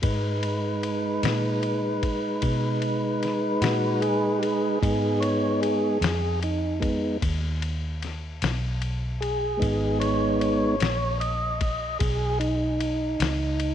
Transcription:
0.02 1.20 G#2 medium
0.02 4.78 G#3 soft
0.02 4.79 D#4 medium
0.02 4.79 B4 medium
0.02 kick medium
0.02 ride medium
0.43 ride medium
0.83 ride medium
1.23 2.40 A#2 medium
1.23 snare medium
1.23 ride medium
1.63 ride medium
2.03 kick medium
2.03 ride medium
2.42 3.59 B2 medium
2.42 kick medium
2.42 ride medium
2.82 ride medium
3.23 snare soft
3.23 ride soft
3.62 4.79 A#2 medium
3.62 4.01 F#4 medium
3.62 snare medium
3.62 ride medium
4.01 4.41 G#4 medium
4.01 ride medium
4.39 4.43 G4 medium
4.43 5.21 G#4 medium
4.43 ride medium
4.82 5.99 G#2 medium
4.82 5.98 G#3 medium
4.82 5.98 B3 soft
4.82 5.98 D#4 medium
4.82 kick loud
4.82 ride medium
5.20 5.60 C#5 medium
5.20 ride medium
5.62 6.40 G#4 medium
5.62 ride medium
6.01 7.18 F2 medium
6.01 snare loud
6.01 ride medium
6.43 6.80 D#4 medium
6.43 ride medium
6.80 7.17 G#3 soft
6.80 7.18 B3 soft
6.80 7.18 D#4 soft
6.80 kick medium
6.80 ride medium
7.22 8.39 D#2 medium
7.22 kick medium
7.22 ride medium
7.62 ride medium
8.03 snare soft
8.03 ride medium
8.42 9.58 B1 medium
8.42 snare medium
8.42 ride medium
8.82 ride medium
9.21 9.98 G#4 medium
9.21 ride medium
9.57 10.75 G#3 medium
9.57 10.76 B3 soft
9.57 10.76 D#4 medium
9.62 10.78 G#1 medium
9.62 kick medium
9.62 ride medium
10.00 10.39 C#5 medium
10.00 ride medium
10.40 11.18 C#5 medium
10.40 ride medium
10.80 11.97 A#1 medium
10.80 snare loud
10.80 ride medium
11.20 11.98 D#5 medium
11.20 ride medium
11.61 kick medium
11.61 ride medium
11.99 13.17 B1 medium
11.99 12.39 G#4 medium
11.99 kick loud
11.99 ride medium
12.40 13.74 D#4 medium
12.40 ride medium
12.81 ride medium
13.20 13.74 C#2 medium
13.20 snare loud
13.20 ride medium
13.60 ride medium

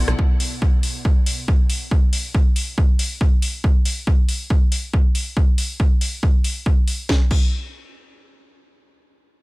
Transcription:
0.00 0.23 B2 medium
0.00 0.23 B3 medium
0.00 0.19 E4 loud
0.00 0.19 A4 loud
0.00 0.19 D5 medium
0.00 0.19 F#5 loud
0.08 0.15 B1 medium
0.08 cross-stick medium
0.08 closed hi-hat soft
0.19 kick loud
0.40 open hi-hat loud
0.62 kick loud
0.83 open hi-hat medium
1.05 kick loud
1.26 open hi-hat loud
1.48 kick loud
1.70 open hi-hat medium
1.91 kick loud
2.13 open hi-hat loud
2.34 kick loud
2.56 open hi-hat medium
2.78 kick loud
2.99 open hi-hat loud
3.21 kick loud
3.42 open hi-hat medium
3.64 kick loud
3.85 open hi-hat loud
4.07 kick loud
4.29 open hi-hat medium
4.50 kick loud
4.72 open hi-hat medium
4.93 kick loud
5.15 open hi-hat medium
5.37 kick loud
5.58 open hi-hat loud
5.80 kick loud
6.01 open hi-hat medium
6.23 kick loud
6.44 open hi-hat medium
6.66 kick loud
6.88 open hi-hat medium
7.09 kick loud
7.09 snare medium
7.31 kick loud
7.31 crash medium

